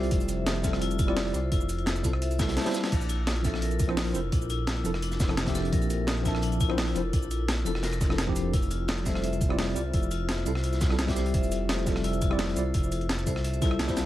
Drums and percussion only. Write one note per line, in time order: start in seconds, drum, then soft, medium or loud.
0.03 closed hi-hat medium
0.11 kick loud
0.11 closed hi-hat loud
0.21 closed hi-hat soft
0.21 shaker soft
0.28 closed hi-hat medium
0.28 shaker medium
0.46 snare loud
0.46 closed hi-hat medium
0.46 closed hi-hat loud
0.56 closed hi-hat soft
0.64 kick medium
0.64 snare soft
0.64 closed hi-hat medium
0.64 shaker medium
0.73 cross-stick soft
0.73 snare soft
0.81 closed hi-hat medium
0.81 closed hi-hat loud
0.91 closed hi-hat soft
0.91 shaker soft
0.99 kick loud
0.99 closed hi-hat medium
0.99 shaker medium
1.08 cross-stick soft
1.17 snare loud
1.17 closed hi-hat loud
1.17 open hi-hat medium
1.26 snare soft
1.34 closed hi-hat medium
1.34 shaker medium
1.52 kick loud
1.52 closed hi-hat loud
1.52 closed hi-hat medium
1.61 shaker soft
1.69 closed hi-hat medium
1.69 shaker medium
1.78 closed hi-hat soft
1.86 snare loud
1.86 closed hi-hat loud
1.86 closed hi-hat medium
1.96 closed hi-hat soft
1.96 shaker soft
2.04 kick medium
2.04 closed hi-hat medium
2.04 shaker medium
2.13 cross-stick soft
2.22 closed hi-hat loud
2.22 closed hi-hat medium
2.31 closed hi-hat soft
2.31 shaker soft
2.39 kick loud
2.39 snare medium
2.39 snare loud
2.39 closed hi-hat medium
2.39 shaker medium
2.48 snare loud
2.48 closed hi-hat medium
2.57 snare medium
2.57 closed hi-hat loud
2.57 closed hi-hat medium
2.61 snare loud
2.61 closed hi-hat medium
2.65 snare medium
2.65 closed hi-hat soft
2.65 closed hi-hat medium
2.65 shaker soft
2.70 snare medium
2.70 closed hi-hat medium
2.74 snare loud
2.74 closed hi-hat medium
2.74 shaker medium
2.83 snare medium
2.83 snare loud
2.83 closed hi-hat medium
2.91 kick loud
2.91 closed hi-hat medium
2.91 closed hi-hat loud
2.91 crash medium
3.01 closed hi-hat soft
3.01 shaker soft
3.09 closed hi-hat medium
3.09 shaker medium
3.27 snare loud
3.27 closed hi-hat loud
3.27 closed hi-hat medium
3.36 closed hi-hat soft
3.45 kick medium
3.45 snare soft
3.45 closed hi-hat medium
3.45 shaker medium
3.54 cross-stick medium
3.54 snare medium
3.62 closed hi-hat loud
3.62 closed hi-hat medium
3.71 closed hi-hat soft
3.71 shaker soft
3.79 kick loud
3.79 closed hi-hat medium
3.79 shaker medium
3.89 cross-stick medium
3.97 snare loud
3.97 closed hi-hat loud
3.97 open hi-hat medium
4.07 snare soft
4.15 closed hi-hat medium
4.15 shaker medium
4.32 kick loud
4.32 closed hi-hat loud
4.42 shaker soft
4.50 closed hi-hat medium
4.50 shaker medium
4.67 snare loud
4.67 closed hi-hat medium
4.77 closed hi-hat soft
4.85 closed hi-hat medium
4.85 shaker medium
4.94 cross-stick medium
4.94 snare soft
5.02 closed hi-hat medium
5.11 snare soft
5.11 closed hi-hat soft
5.11 shaker soft
5.20 kick loud
5.20 snare soft
5.20 snare loud
5.20 closed hi-hat medium
5.20 shaker medium
5.29 cross-stick medium
5.29 snare soft
5.37 snare loud
5.37 closed hi-hat loud
5.37 closed hi-hat medium
5.46 kick medium
5.46 snare loud
5.46 closed hi-hat medium
5.55 snare medium
5.55 closed hi-hat medium
5.55 shaker medium
5.65 closed hi-hat medium
5.72 kick loud
5.72 closed hi-hat medium
5.82 closed hi-hat soft
5.82 shaker soft
5.90 closed hi-hat medium
5.90 shaker medium
6.07 snare loud
6.07 closed hi-hat medium
6.17 closed hi-hat soft
6.25 kick medium
6.25 snare soft
6.25 closed hi-hat medium
6.25 shaker medium
6.35 cross-stick soft
6.35 snare soft
6.42 closed hi-hat medium
6.52 closed hi-hat soft
6.52 shaker soft
6.60 kick loud
6.60 closed hi-hat medium
6.60 shaker medium
6.70 cross-stick medium
6.78 snare loud
6.78 closed hi-hat medium
6.78 open hi-hat medium
6.87 snare soft
6.95 closed hi-hat medium
6.95 shaker medium
7.13 kick loud
7.13 closed hi-hat medium
7.23 shaker soft
7.31 closed hi-hat medium
7.31 shaker medium
7.48 snare loud
7.48 closed hi-hat medium
7.58 closed hi-hat soft
7.66 closed hi-hat medium
7.66 shaker medium
7.75 cross-stick soft
7.75 snare soft
7.83 snare loud
7.83 closed hi-hat medium
7.93 cross-stick soft
7.93 closed hi-hat soft
7.93 shaker soft
8.01 kick loud
8.01 snare soft
8.01 closed hi-hat medium
8.01 shaker medium
8.10 cross-stick soft
8.10 snare soft
8.18 snare loud
8.18 closed hi-hat medium
8.28 kick medium
8.36 closed hi-hat medium
8.36 shaker medium
8.53 kick loud
8.53 closed hi-hat medium
8.62 closed hi-hat soft
8.62 shaker soft
8.70 closed hi-hat medium
8.70 shaker medium
8.88 snare loud
8.88 closed hi-hat medium
8.98 closed hi-hat soft
9.05 kick medium
9.05 snare soft
9.05 closed hi-hat medium
9.05 shaker medium
9.15 cross-stick soft
9.15 snare medium
9.24 closed hi-hat medium
9.33 closed hi-hat soft
9.33 shaker soft
9.41 kick loud
9.41 closed hi-hat medium
9.41 shaker medium
9.50 cross-stick soft
9.59 snare loud
9.59 closed hi-hat medium
9.59 open hi-hat medium
9.68 snare soft
9.76 closed hi-hat medium
9.76 shaker medium
9.93 kick loud
9.93 closed hi-hat medium
10.03 shaker soft
10.11 closed hi-hat medium
10.11 shaker medium
10.29 snare loud
10.29 closed hi-hat medium
10.29 closed hi-hat loud
10.38 closed hi-hat soft
10.46 closed hi-hat medium
10.46 shaker medium
10.55 cross-stick soft
10.55 snare soft
10.64 closed hi-hat medium
10.73 snare soft
10.73 closed hi-hat soft
10.73 shaker soft
10.81 kick loud
10.81 snare loud
10.81 snare soft
10.81 closed hi-hat medium
10.81 shaker medium
10.90 cross-stick soft
10.90 snare medium
10.98 snare loud
10.98 closed hi-hat medium
10.98 closed hi-hat loud
11.08 kick medium
11.08 snare loud
11.08 closed hi-hat medium
11.16 snare medium
11.16 closed hi-hat medium
11.16 shaker medium
11.26 closed hi-hat medium
11.34 kick loud
11.34 closed hi-hat medium
11.34 closed hi-hat loud
11.43 closed hi-hat soft
11.43 shaker soft
11.52 closed hi-hat medium
11.52 shaker medium
11.69 snare loud
11.69 closed hi-hat loud
11.69 closed hi-hat medium
11.78 closed hi-hat soft
11.86 kick medium
11.86 snare soft
11.86 closed hi-hat medium
11.86 shaker medium
11.95 cross-stick soft
11.95 snare soft
12.04 closed hi-hat loud
12.04 closed hi-hat medium
12.13 closed hi-hat soft
12.13 shaker soft
12.22 kick loud
12.22 closed hi-hat medium
12.22 shaker medium
12.31 cross-stick soft
12.39 snare loud
12.39 closed hi-hat loud
12.39 open hi-hat medium
12.49 snare soft
12.57 closed hi-hat medium
12.57 shaker medium
12.74 kick loud
12.74 closed hi-hat loud
12.74 closed hi-hat medium
12.83 shaker soft
12.92 closed hi-hat medium
12.92 shaker medium
13.01 closed hi-hat soft
13.09 snare loud
13.09 closed hi-hat loud
13.09 closed hi-hat medium
13.19 closed hi-hat soft
13.19 shaker soft
13.27 kick medium
13.27 closed hi-hat medium
13.27 shaker medium
13.36 cross-stick soft
13.36 snare soft
13.44 closed hi-hat loud
13.44 closed hi-hat medium
13.54 closed hi-hat soft
13.54 shaker soft
13.62 kick loud
13.62 snare soft
13.62 closed hi-hat medium
13.62 shaker medium
13.71 cross-stick soft
13.79 snare loud
13.79 closed hi-hat loud
13.79 closed hi-hat medium
13.88 kick medium
13.88 snare medium
13.88 closed hi-hat soft
13.88 shaker soft
13.97 snare medium
13.97 snare loud
13.97 closed hi-hat medium
13.97 shaker medium